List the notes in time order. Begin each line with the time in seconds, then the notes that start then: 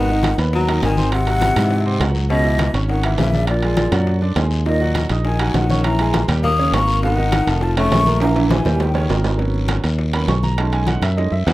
Already playing: G#1 D#3 F#5
0.08 D#3 D#4 D#5, high bongo, high conga
0.23 high bongo, high conga, high timbale, low timbale, short guiro
0.38 D#2 B3 B4 B5, high bongo, high conga, high timbale, short guiro
0.53 F#3 A#5, high bongo, high conga, long guiro
0.68 D#3 D#4 D#5, high bongo, high conga, high timbale
0.82 G#1 D#3 G#5, high bongo, low bongo, high conga, high timbale, low timbale, short guiro
0.97 C4 C5 C6, high conga, short guiro
1.12 C3 F#5, high bongo, high conga, high timbale, long guiro
1.27 F#3 F#4 F#5, high bongo, high conga, high timbale
1.41 high bongo, high conga, high timbale, low timbale, short guiro
1.56 G#2 E3 E4 E5, high conga, low conga, high timbale, short guiro
1.71 high bongo, high conga, long guiro
1.85 C3 C4 C5, high bongo, high conga
2.00 C#2 F#3 F#4 F#5, high bongo, low bongo, high timbale, low timbale, short guiro
2.15 high conga, short guiro
2.30 B2 C#3 C#4 C#5 D#5, high bongo, high conga, long guiro
2.45 E3 E4 E5, high bongo, high conga
2.59 high bongo, high conga, high timbale, low timbale, short guiro
2.74 G#1 C#4 C#5 C#6, high bongo, high conga, high timbale, short guiro
2.88 D#3 F#5, high bongo, high conga, long guiro
3.03 E3 E4 E5, high bongo, high conga, high timbale
3.18 A#1 C#3 E5, high bongo, low bongo, high conga, high timbale, low timbale, short guiro
3.33 D4 D5 D6, high conga, short guiro
3.47 A#2 D5, high bongo, high timbale, long guiro
3.63 G#3 G#4 G#5, high bongo, high conga, high timbale
3.77 high bongo, high conga, high timbale, low timbale, short guiro
3.92 F#2 F#3 F#4 F#5, high conga, low conga, high timbale, short guiro
4.07 high bongo, high conga, long guiro
4.21 D3 D4 D5, high bongo, high conga
4.36 D#2 G#3 G#4 G#5, high bongo, low bongo, high timbale, low timbale, short guiro
4.51 high conga, short guiro
4.65 A#2 D#3 D#4 D#5, high bongo, high conga, long guiro
4.81 F#3 F#4 F#5, high bongo, high conga
4.95 high bongo, high conga, high timbale, low timbale, short guiro
5.09 A#1 D#4 D#5 D#6, high conga, high timbale, short guiro
5.25 D#3 G#5, high bongo, high conga, long guiro
5.39 F#3 F#4 F#5, high bongo, high conga, high timbale
5.54 A#1 D#3 F#5, high bongo, low bongo, high conga, high timbale, low timbale, short guiro
5.70 C#4 C#5 C#6, high conga, short guiro
5.84 E3 A#5, high bongo, high conga, high timbale, long guiro
5.99 G#3 G#4 G#5, high bongo, high conga, high timbale
6.14 high bongo, high conga, high timbale, low timbale, short guiro
6.28 D#2 G3 G4 G5, high conga, low conga, high timbale, short guiro
6.43 A#3 D#6, high bongo, high conga, low conga, long guiro
6.59 C#3 C#4 C#5, high bongo, high conga
6.72 G#1 A#3 A#4 A#5 C#6, high bongo, low bongo, high conga, high timbale, low timbale, short guiro
6.88 high conga, short guiro
7.03 B2 D#3 B3 B4 F#5, high bongo, high conga, long guiro
7.17 D#3 D#4 D#5, high bongo, high conga
7.32 high bongo, high conga, high timbale, low timbale, short guiro
7.47 F1 A3 A4 A5, high bongo, high conga, high timbale, short guiro
7.61 F3 A5, high bongo, high conga, long guiro
7.77 C#3 A3 C#4 C#5 C#6, high bongo, high conga, high timbale
7.91 A#1, high bongo, low bongo, high conga, high timbale, low timbale, short guiro
8.06 A#3 A#4 A#5, high conga, short guiro
8.20 E3 A#5, high bongo, high conga, high timbale, long guiro
8.35 E3 E4 E5, high bongo, high conga, high timbale
8.50 E3 G#5, high bongo, high conga, low timbale, short guiro
8.65 D#2 G3 G4 G5, high bongo, high conga, low conga, low timbale, short guiro
8.80 D#3 G5, high bongo, high conga, low timbale, long guiro
8.94 C#3 C#4 C#5, high bongo, high conga, low timbale
9.08 G#1 A#3 A#4 A#5, high bongo, low bongo, high conga, low timbale, short guiro
9.24 high conga, low timbale, short guiro
9.38 F#3 A#3 B3 C#4, high bongo, high conga, long guiro
9.54 high bongo, high conga
9.68 high bongo, high conga, high timbale, low timbale, short guiro
9.84 D#2, high bongo, high conga, high timbale, short guiro
9.98 high bongo, high conga, long guiro
10.13 F#3 A#3 B3 C#4 B5, high bongo, high conga, high timbale
10.28 B1 C#6, high bongo, low bongo, high conga, high timbale, low timbale, short guiro
10.43 A#5, high conga, short guiro
10.57 G#3 A3 C#4 D#4 A5, high bongo, high timbale, long guiro
10.72 G#5, high bongo, high conga, high timbale
10.87 F#5, high bongo, high conga, high timbale, low timbale, short guiro
11.02 F#2 E5, high bongo, high conga, low conga, high timbale, short guiro
11.17 G#3 A3 C#4 D#4 D#5, high bongo, high conga, long guiro
11.32 F#2 E5, high bongo, high conga
11.46 E2 F#5, high bongo, low bongo, high conga, high timbale, low timbale, short guiro